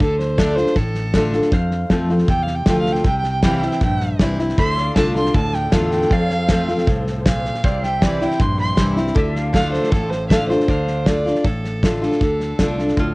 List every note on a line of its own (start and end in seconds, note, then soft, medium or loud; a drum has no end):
0.00 0.63 D2 medium
0.00 0.36 D3 medium
0.00 0.18 A4 medium
0.00 1.50 D5 medium
0.00 1.51 F5 medium
0.00 kick loud
0.00 snare soft
0.19 0.40 C5 medium
0.19 snare soft
0.38 0.56 D3 medium
0.38 0.57 A3 medium
0.38 0.57 D4 loud
0.38 0.56 F4 loud
0.38 0.57 D5 medium
0.38 kick medium
0.38 snare loud
0.38 hi-hat pedal medium
0.55 0.76 D4 medium
0.55 0.76 F4 medium
0.55 0.77 C5 medium
0.55 snare soft
0.66 snare soft
0.76 1.39 A1 medium
0.76 1.49 A2 medium
0.76 1.50 A4 medium
0.76 kick loud
0.76 snare soft
0.94 snare soft
1.14 1.33 D3 medium
1.14 1.33 A3 medium
1.14 1.34 D4 medium
1.14 1.32 F4 loud
1.14 kick medium
1.14 snare loud
1.14 hi-hat pedal medium
1.33 1.53 D4 soft
1.33 1.52 F4 medium
1.33 snare soft
1.42 snare soft
1.52 1.84 F2 medium
1.52 2.26 F2 medium
1.52 3.04 C5 medium
1.52 3.05 F5 medium
1.52 kick loud
1.52 snare soft
1.71 snare soft
1.90 2.23 F2 medium
1.90 2.09 F3 loud
1.90 2.09 A3 loud
1.90 2.10 C4 loud
1.90 2.09 F4 loud
1.90 kick medium
1.90 snare loud
1.90 hi-hat pedal medium
2.09 2.29 C4 medium
2.09 2.28 F4 medium
2.09 snare soft
2.18 snare soft
2.28 2.61 E2 medium
2.28 3.02 C3 medium
2.28 2.44 G5 medium
2.28 kick loud
2.28 snare soft
2.42 2.56 F5 medium
2.47 snare soft
2.55 2.67 G5 medium
2.66 2.99 D2 medium
2.66 3.04 F3 medium
2.66 3.04 A3 medium
2.66 3.04 C4 medium
2.66 3.05 F4 medium
2.66 2.79 G5 medium
2.66 kick medium
2.66 snare loud
2.66 hi-hat pedal medium
2.80 2.94 F5 medium
2.86 snare soft
2.92 3.05 G5 medium
2.92 snare soft
3.04 3.67 C2 medium
3.04 3.78 C3 medium
3.04 3.18 G5 medium
3.04 kick loud
3.04 snare soft
3.19 3.31 G5 medium
3.24 snare soft
3.31 3.44 G5 medium
3.43 3.62 E3 loud
3.43 3.62 G3 medium
3.43 3.63 C4 loud
3.43 3.62 E4 loud
3.43 4.58 C5 medium
3.43 3.66 F5 medium
3.43 3.56 G5 medium
3.43 kick medium
3.43 snare loud
3.43 hi-hat pedal medium
3.57 3.69 G5 medium
3.62 3.82 C4 soft
3.62 3.81 E4 medium
3.62 4.58 E5 medium
3.62 snare soft
3.69 3.82 G5 medium
3.69 snare soft
3.81 4.14 A#1 medium
3.81 4.55 G2 medium
3.81 4.19 G5 loud
3.81 kick loud
3.81 snare soft
4.01 snare soft
4.20 4.52 C2 medium
4.20 4.38 E3 medium
4.20 4.39 G3 medium
4.20 4.39 C4 medium
4.20 4.38 E4 medium
4.20 kick medium
4.20 snare loud
4.20 hi-hat pedal medium
4.39 4.59 C4 medium
4.39 4.58 E4 medium
4.39 snare soft
4.49 snare soft
4.58 4.89 D2 medium
4.58 4.95 D3 medium
4.58 6.10 D3 medium
4.58 6.10 D4 medium
4.58 7.61 F4 medium
4.58 7.61 A4 medium
4.58 4.84 C5 medium
4.58 4.80 E5 medium
4.58 4.95 C6 loud
4.58 kick loud
4.58 snare soft
4.78 6.10 F5 medium
4.78 snare soft
4.84 6.10 D5 medium
4.96 5.29 C2 medium
4.96 5.14 D3 medium
4.96 5.15 A3 loud
4.96 5.15 D4 loud
4.96 5.14 F4 loud
4.96 5.15 A5 medium
4.96 kick medium
4.96 snare loud
4.96 hi-hat pedal medium
5.16 5.35 D4 medium
5.16 5.34 F4 medium
5.16 5.35 C6 medium
5.16 snare soft
5.25 snare soft
5.34 5.67 D2 medium
5.34 6.07 A2 medium
5.34 5.56 A5 medium
5.34 kick loud
5.34 snare soft
5.53 5.74 G5 loud
5.53 snare soft
5.72 6.05 E2 medium
5.72 6.09 D3 medium
5.72 6.10 A3 medium
5.72 6.10 D4 medium
5.72 6.10 F4 loud
5.72 5.91 F5 medium
5.72 kick medium
5.72 snare loud
5.72 hi-hat pedal medium
5.91 6.13 G5 medium
5.91 snare soft
6.02 snare soft
6.09 6.73 F2 medium
6.09 6.84 F2 medium
6.09 7.62 F3 medium
6.09 7.61 C5 medium
6.09 6.38 D5 medium
6.09 6.86 F5 loud
6.09 kick loud
6.09 snare soft
6.13 7.63 F5 medium
6.30 snare soft
6.38 7.63 C5 medium
6.49 6.68 F3 medium
6.49 6.68 A3 loud
6.49 6.69 C4 medium
6.49 6.67 F4 loud
6.49 kick loud
6.49 snare loud
6.49 hi-hat pedal medium
6.68 6.88 C4 medium
6.68 6.87 F4 medium
6.68 snare soft
6.78 snare soft
6.87 7.50 C2 medium
6.87 7.24 A2 medium
6.87 kick loud
6.87 snare soft
7.07 snare soft
7.26 7.62 A#2 medium
7.26 7.66 F5 medium
7.26 kick loud
7.26 snare loud
7.26 hi-hat pedal medium
7.45 snare soft
7.55 snare soft
7.64 8.26 C2 medium
7.64 8.36 C3 medium
7.64 9.15 C3 medium
7.64 9.15 C4 medium
7.64 9.15 E4 medium
7.64 9.15 G4 medium
7.64 9.15 C5 medium
7.64 7.82 D5 medium
7.64 7.86 F5 medium
7.64 kick loud
7.64 snare soft
7.83 9.16 E5 medium
7.83 8.04 G5 medium
7.83 snare soft
8.02 8.20 E3 loud
8.02 8.20 G3 medium
8.02 8.20 C4 loud
8.02 8.20 E4 medium
8.02 8.23 D5 medium
8.02 kick medium
8.02 snare loud
8.02 hi-hat pedal medium
8.21 8.40 C4 medium
8.21 8.39 E4 medium
8.21 8.42 G5 loud
8.21 snare soft
8.31 snare soft
8.39 8.72 A#1 medium
8.39 9.13 G2 medium
8.39 8.59 C6 loud
8.39 kick loud
8.39 snare soft
8.58 8.78 C6 loud
8.58 snare soft
8.77 9.10 C2 medium
8.77 8.96 E3 medium
8.77 8.97 G3 loud
8.77 8.97 C4 medium
8.77 8.95 E4 loud
8.77 kick medium
8.77 snare loud
8.77 hi-hat pedal medium
8.97 9.16 C4 medium
8.97 9.15 E4 medium
8.97 snare soft
9.07 snare soft
9.14 9.78 D2 medium
9.14 9.52 D3 medium
9.14 10.67 D3 medium
9.14 10.67 D4 medium
9.14 10.67 F4 medium
9.14 10.67 A4 medium
9.14 10.68 D5 medium
9.14 kick loud
9.14 snare soft
9.19 9.39 E5 medium
9.36 10.68 F5 medium
9.36 snare soft
9.53 9.90 D3 medium
9.53 9.90 A3 loud
9.53 9.90 D4 loud
9.53 9.91 F4 loud
9.53 9.71 F5 loud
9.53 kick loud
9.53 snare loud
9.53 hi-hat pedal medium
9.72 9.92 C5 medium
9.72 snare soft
9.84 snare soft
9.90 10.55 A1 medium
9.90 10.64 A2 medium
9.90 10.11 A4 medium
9.90 kick loud
9.90 snare soft
10.10 10.28 C5 medium
10.10 snare soft
10.28 10.49 D3 medium
10.28 10.49 A3 medium
10.28 10.48 F5 medium
10.28 kick medium
10.28 snare loud
10.28 hi-hat pedal medium
10.32 10.50 D4 medium
10.32 10.49 F4 medium
10.48 10.69 D4 medium
10.48 10.68 F4 medium
10.48 11.08 C5 medium
10.48 snare soft
10.60 snare soft
10.68 11.31 D2 medium
10.68 11.07 D3 medium
10.68 13.14 D5 medium
10.68 13.14 F5 medium
10.68 kick loud
10.68 snare soft
10.88 snare soft
11.06 11.26 D3 medium
11.06 11.26 A3 medium
11.06 11.26 D4 medium
11.06 11.24 F4 medium
11.06 11.46 D5 loud
11.06 kick medium
11.06 snare loud
11.06 hi-hat pedal medium
11.26 11.45 D4 soft
11.26 11.44 F4 medium
11.26 snare soft
11.35 snare soft
11.44 12.07 A1 medium
11.44 12.18 A2 medium
11.44 12.02 A4 medium
11.44 kick loud
11.44 snare soft
11.64 snare soft
11.83 12.01 D3 medium
11.83 12.02 A3 medium
11.83 12.02 D4 medium
11.83 12.00 F4 medium
11.83 kick medium
11.83 snare loud
11.83 hi-hat pedal medium
12.02 12.21 D4 soft
12.02 12.20 F4 medium
12.02 13.13 A4 medium
12.02 snare soft
12.12 snare soft
12.21 12.52 D2 medium
12.21 12.58 D3 medium
12.21 kick loud
12.21 snare soft
12.40 snare soft
12.59 12.92 C2 medium
12.59 12.78 D3 medium
12.59 12.78 A3 medium
12.59 12.79 D4 medium
12.59 12.77 F4 medium
12.59 kick medium
12.59 snare loud
12.59 hi-hat pedal medium
12.78 12.98 D4 medium
12.78 12.97 F4 medium
12.78 snare soft
12.88 snare soft
12.97 13.14 D2 medium
12.97 13.14 A2 medium
12.97 13.14 F4 medium
12.97 kick loud
12.97 snare soft